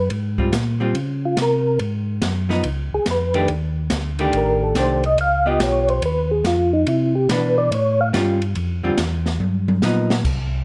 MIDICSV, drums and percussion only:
0, 0, Header, 1, 2, 480
1, 0, Start_track
1, 0, Tempo, 422535
1, 123, Time_signature, 4, 2, 24, 8
1, 12089, End_track
2, 0, Start_track
2, 0, Title_t, "Drums"
2, 114, Note_on_c, 9, 51, 57
2, 228, Note_off_c, 9, 51, 0
2, 434, Note_on_c, 9, 36, 62
2, 548, Note_off_c, 9, 36, 0
2, 597, Note_on_c, 9, 38, 72
2, 598, Note_on_c, 9, 44, 53
2, 598, Note_on_c, 9, 51, 67
2, 710, Note_off_c, 9, 38, 0
2, 712, Note_off_c, 9, 44, 0
2, 712, Note_off_c, 9, 51, 0
2, 1077, Note_on_c, 9, 51, 59
2, 1191, Note_off_c, 9, 51, 0
2, 1555, Note_on_c, 9, 38, 62
2, 1556, Note_on_c, 9, 44, 44
2, 1556, Note_on_c, 9, 51, 65
2, 1668, Note_off_c, 9, 38, 0
2, 1669, Note_off_c, 9, 44, 0
2, 1669, Note_off_c, 9, 51, 0
2, 2037, Note_on_c, 9, 51, 54
2, 2150, Note_off_c, 9, 51, 0
2, 2517, Note_on_c, 9, 38, 72
2, 2518, Note_on_c, 9, 44, 53
2, 2518, Note_on_c, 9, 51, 67
2, 2631, Note_off_c, 9, 38, 0
2, 2632, Note_off_c, 9, 44, 0
2, 2632, Note_off_c, 9, 51, 0
2, 2838, Note_on_c, 9, 38, 36
2, 2951, Note_off_c, 9, 38, 0
2, 2993, Note_on_c, 9, 51, 65
2, 3107, Note_off_c, 9, 51, 0
2, 3473, Note_on_c, 9, 38, 54
2, 3474, Note_on_c, 9, 44, 49
2, 3474, Note_on_c, 9, 51, 66
2, 3587, Note_off_c, 9, 38, 0
2, 3588, Note_off_c, 9, 44, 0
2, 3588, Note_off_c, 9, 51, 0
2, 3795, Note_on_c, 9, 51, 46
2, 3908, Note_off_c, 9, 51, 0
2, 3954, Note_on_c, 9, 51, 54
2, 4068, Note_off_c, 9, 51, 0
2, 4429, Note_on_c, 9, 38, 73
2, 4431, Note_on_c, 9, 44, 67
2, 4431, Note_on_c, 9, 51, 68
2, 4543, Note_off_c, 9, 38, 0
2, 4544, Note_off_c, 9, 44, 0
2, 4544, Note_off_c, 9, 51, 0
2, 4757, Note_on_c, 9, 51, 42
2, 4870, Note_off_c, 9, 51, 0
2, 4918, Note_on_c, 9, 51, 57
2, 5031, Note_off_c, 9, 51, 0
2, 5397, Note_on_c, 9, 38, 64
2, 5398, Note_on_c, 9, 44, 54
2, 5398, Note_on_c, 9, 51, 60
2, 5510, Note_off_c, 9, 38, 0
2, 5511, Note_off_c, 9, 44, 0
2, 5511, Note_off_c, 9, 51, 0
2, 5720, Note_on_c, 9, 51, 47
2, 5833, Note_off_c, 9, 51, 0
2, 5884, Note_on_c, 9, 51, 61
2, 5997, Note_off_c, 9, 51, 0
2, 6360, Note_on_c, 9, 38, 70
2, 6361, Note_on_c, 9, 44, 58
2, 6361, Note_on_c, 9, 51, 69
2, 6473, Note_off_c, 9, 38, 0
2, 6475, Note_off_c, 9, 44, 0
2, 6475, Note_off_c, 9, 51, 0
2, 6684, Note_on_c, 9, 51, 40
2, 6798, Note_off_c, 9, 51, 0
2, 6840, Note_on_c, 9, 51, 68
2, 6954, Note_off_c, 9, 51, 0
2, 7321, Note_on_c, 9, 38, 62
2, 7322, Note_on_c, 9, 44, 45
2, 7322, Note_on_c, 9, 51, 64
2, 7434, Note_off_c, 9, 38, 0
2, 7435, Note_off_c, 9, 44, 0
2, 7435, Note_off_c, 9, 51, 0
2, 7799, Note_on_c, 9, 51, 65
2, 7913, Note_off_c, 9, 51, 0
2, 8284, Note_on_c, 9, 38, 76
2, 8286, Note_on_c, 9, 44, 58
2, 8286, Note_on_c, 9, 51, 82
2, 8398, Note_off_c, 9, 38, 0
2, 8399, Note_off_c, 9, 44, 0
2, 8399, Note_off_c, 9, 51, 0
2, 8769, Note_on_c, 9, 51, 65
2, 8882, Note_off_c, 9, 51, 0
2, 9244, Note_on_c, 9, 38, 72
2, 9245, Note_on_c, 9, 44, 53
2, 9245, Note_on_c, 9, 51, 67
2, 9357, Note_off_c, 9, 38, 0
2, 9359, Note_off_c, 9, 44, 0
2, 9359, Note_off_c, 9, 51, 0
2, 9561, Note_on_c, 9, 51, 49
2, 9675, Note_off_c, 9, 51, 0
2, 9716, Note_on_c, 9, 51, 61
2, 9830, Note_off_c, 9, 51, 0
2, 10196, Note_on_c, 9, 38, 73
2, 10197, Note_on_c, 9, 44, 60
2, 10197, Note_on_c, 9, 51, 76
2, 10309, Note_off_c, 9, 38, 0
2, 10311, Note_off_c, 9, 44, 0
2, 10311, Note_off_c, 9, 51, 0
2, 10516, Note_on_c, 9, 38, 48
2, 10630, Note_off_c, 9, 38, 0
2, 10679, Note_on_c, 9, 48, 52
2, 10793, Note_off_c, 9, 48, 0
2, 11000, Note_on_c, 9, 48, 74
2, 11113, Note_off_c, 9, 48, 0
2, 11156, Note_on_c, 9, 38, 68
2, 11157, Note_on_c, 9, 44, 65
2, 11270, Note_off_c, 9, 38, 0
2, 11271, Note_off_c, 9, 44, 0
2, 11477, Note_on_c, 9, 38, 91
2, 11591, Note_off_c, 9, 38, 0
2, 11639, Note_on_c, 9, 36, 71
2, 11641, Note_on_c, 9, 49, 68
2, 11753, Note_off_c, 9, 36, 0
2, 11755, Note_off_c, 9, 49, 0
2, 12089, End_track
0, 0, End_of_file